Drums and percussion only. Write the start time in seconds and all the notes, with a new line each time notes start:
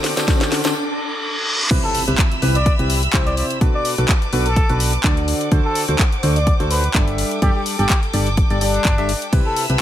0.04 snare, open hi-hat
0.17 snare, closed hi-hat, tambourine
0.28 kick, snare, closed hi-hat, tambourine
0.41 snare, closed hi-hat, tambourine
0.52 snare, open hi-hat
0.64 snare, closed hi-hat, tambourine
1.71 kick, closed hi-hat, crash
1.95 open hi-hat
2.08 closed hi-hat
2.18 kick, clap, closed hi-hat
2.32 closed hi-hat
2.42 open hi-hat
2.55 closed hi-hat
2.66 kick, closed hi-hat
2.79 closed hi-hat
2.90 open hi-hat
3.03 closed hi-hat
3.13 kick, clap, closed hi-hat
3.27 closed hi-hat
3.37 open hi-hat
3.50 closed hi-hat
3.61 kick, closed hi-hat
3.85 open hi-hat
3.98 closed hi-hat
4.09 kick, clap, closed hi-hat
4.22 closed hi-hat
4.33 open hi-hat
4.46 closed hi-hat
4.56 kick, closed hi-hat
4.69 closed hi-hat
4.80 open hi-hat
4.93 closed hi-hat
5.04 kick, clap, closed hi-hat
5.17 closed hi-hat
5.28 open hi-hat
5.41 closed hi-hat
5.52 kick, closed hi-hat
5.75 open hi-hat
5.89 closed hi-hat
5.99 kick, clap, closed hi-hat
6.12 closed hi-hat
6.23 open hi-hat
6.36 closed hi-hat
6.47 kick, closed hi-hat
6.60 closed hi-hat
6.71 open hi-hat
6.84 closed hi-hat
6.94 kick, clap, closed hi-hat
7.08 closed hi-hat
7.18 open hi-hat
7.31 closed hi-hat
7.42 kick, closed hi-hat
7.66 open hi-hat
7.79 closed hi-hat
7.90 kick, clap, closed hi-hat
8.03 closed hi-hat
8.13 open hi-hat
8.27 closed hi-hat
8.37 kick, closed hi-hat
8.50 closed hi-hat
8.61 open hi-hat
8.74 closed hi-hat
8.85 kick, clap, closed hi-hat
8.98 closed hi-hat
9.09 open hi-hat
9.22 closed hi-hat
9.33 kick, closed hi-hat, ride
9.56 open hi-hat
9.70 closed hi-hat